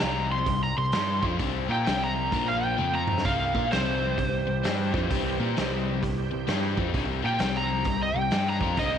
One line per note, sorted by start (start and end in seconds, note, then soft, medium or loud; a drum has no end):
0.00 0.44 C2 medium
0.00 0.46 C3 medium
0.00 2.30 G3 medium
0.00 0.47 G3 medium
0.00 2.30 C4 medium
0.00 0.47 C4 medium
0.00 2.30 E4 medium
0.00 0.31 A#5 medium
0.00 snare loud
0.32 0.62 C6 medium
0.46 0.74 C2 medium
0.46 0.71 C3 medium
0.46 0.71 G3 medium
0.46 kick medium
0.46 open hi-hat medium
0.63 0.78 A#5 medium
0.77 0.93 C2 medium
0.77 0.90 C3 medium
0.77 0.91 G3 medium
0.77 1.23 C6 medium
0.92 1.21 G2 medium
0.92 1.22 G3 medium
0.92 1.22 D4 medium
0.92 1.22 G4 medium
0.92 snare loud
0.92 open hi-hat medium
1.22 1.39 F2 medium
1.22 1.38 F3 medium
1.22 1.39 C4 medium
1.22 1.39 F4 medium
1.22 kick loud
1.38 1.67 C2 medium
1.38 1.68 C3 medium
1.38 1.68 G3 loud
1.38 1.69 C4 loud
1.38 kick loud
1.38 open hi-hat medium
1.69 1.85 A#2 medium
1.69 1.85 A#3 medium
1.69 1.86 F4 medium
1.69 1.86 A#4 medium
1.69 2.01 G5 medium
1.86 2.30 C2 medium
1.86 2.32 C3 medium
1.86 2.32 G3 medium
1.86 2.32 C4 medium
1.86 snare loud
1.86 open hi-hat medium
2.04 2.48 A#5 medium
2.31 2.75 A#1 medium
2.31 2.77 A#2 medium
2.31 2.78 F3 medium
2.31 2.76 F3 loud
2.31 2.77 A#3 medium
2.31 2.78 A#3 loud
2.31 2.77 F4 medium
2.31 2.77 A#4 medium
2.31 kick loud
2.31 open hi-hat soft
2.48 2.64 F5 medium
2.64 2.94 G5 medium
2.78 3.22 F2 medium
2.78 3.24 F3 medium
2.78 3.25 F3 medium
2.78 3.24 C4 medium
2.78 3.24 F4 medium
2.78 3.25 F4 medium
2.78 3.25 C5 medium
2.78 high tom medium
2.95 3.24 A#5 medium
3.07 mid tom medium
3.18 snare medium
3.25 3.53 C2 medium
3.25 3.54 C3 medium
3.25 6.90 E3 medium
3.25 6.90 G3 medium
3.25 3.54 G3 medium
3.25 6.90 C4 medium
3.25 3.54 C4 loud
3.25 6.90 G4 medium
3.25 3.70 F5 medium
3.25 kick loud
3.25 open hi-hat soft
3.54 3.70 A#2 medium
3.54 3.71 A#3 medium
3.54 3.71 F4 medium
3.54 3.71 A#4 medium
3.54 kick loud
3.72 4.15 C2 medium
3.72 4.17 C3 medium
3.72 4.17 G3 medium
3.72 4.18 C4 loud
3.72 5.06 C5 medium
3.72 snare loud
3.72 open hi-hat soft
4.18 4.45 C2 medium
4.18 4.42 C3 medium
4.18 4.42 G3 medium
4.18 kick medium
4.18 open hi-hat medium
4.47 4.63 C2 medium
4.47 4.60 C3 medium
4.47 4.61 G3 medium
4.64 4.92 G2 medium
4.64 4.92 G3 medium
4.64 4.92 D4 medium
4.64 4.93 G4 medium
4.64 snare loud
4.64 open hi-hat medium
4.93 5.09 F2 medium
4.93 5.09 F3 medium
4.93 5.09 C4 medium
4.93 5.09 F4 medium
4.93 kick loud
5.10 5.37 C2 medium
5.10 5.39 C3 medium
5.10 5.39 G3 loud
5.10 5.39 C4 loud
5.10 kick loud
5.10 open hi-hat medium
5.40 5.55 A#2 medium
5.40 5.55 A#3 medium
5.40 5.56 F4 medium
5.40 5.56 A#4 loud
5.56 6.00 C2 medium
5.56 6.02 C3 medium
5.56 6.02 G3 medium
5.56 6.02 C4 medium
5.56 snare loud
5.56 open hi-hat medium
6.03 6.30 C2 medium
6.03 6.26 C3 medium
6.03 6.26 G3 medium
6.03 kick medium
6.03 open hi-hat medium
6.31 6.47 C2 medium
6.31 6.44 C3 medium
6.31 6.44 G3 medium
6.47 6.75 G2 medium
6.47 6.76 G3 medium
6.47 6.76 D4 medium
6.47 6.77 G4 medium
6.47 snare loud
6.47 open hi-hat soft
6.77 6.93 F2 medium
6.77 6.93 F3 medium
6.77 6.93 C4 medium
6.77 6.94 F4 medium
6.77 kick loud
6.93 7.21 C2 medium
6.93 7.22 C3 medium
6.93 7.22 G3 loud
6.93 7.10 G#3 medium
6.93 7.22 C4 loud
6.93 7.10 C#4 medium
6.93 7.10 F4 medium
6.93 7.10 G#4 medium
6.93 kick loud
6.93 open hi-hat soft
7.09 8.98 G3 medium
7.09 8.98 C4 medium
7.09 8.98 E4 medium
7.09 8.98 G4 medium
7.23 7.39 A#2 medium
7.23 7.39 A#3 medium
7.23 7.39 F4 loud
7.23 7.40 A#4 medium
7.23 7.55 G5 loud
7.39 7.83 C2 medium
7.39 7.85 C3 medium
7.39 7.85 G3 loud
7.39 7.85 C4 loud
7.39 snare loud
7.39 open hi-hat soft
7.57 8.01 A#5 medium
7.84 8.13 C2 medium
7.84 8.10 C3 medium
7.84 8.10 G3 medium
7.84 kick medium
7.84 open hi-hat medium
8.03 8.18 D#5 medium
8.14 8.30 C2 medium
8.14 8.29 C3 medium
8.14 8.29 G3 medium
8.18 8.47 G5 medium
8.31 8.59 G2 medium
8.31 8.60 G3 medium
8.31 8.61 D4 medium
8.31 8.61 G4 medium
8.31 snare loud
8.31 open hi-hat soft
8.50 8.78 A#5 loud
8.61 8.76 F2 medium
8.61 8.78 F3 medium
8.61 8.78 C4 medium
8.61 8.78 F4 loud
8.61 kick medium
8.77 8.98 C2 medium
8.77 8.98 C3 medium
8.77 8.98 G3 medium
8.77 8.98 C4 medium
8.77 8.98 D#5 loud
8.77 kick loud
8.77 open hi-hat medium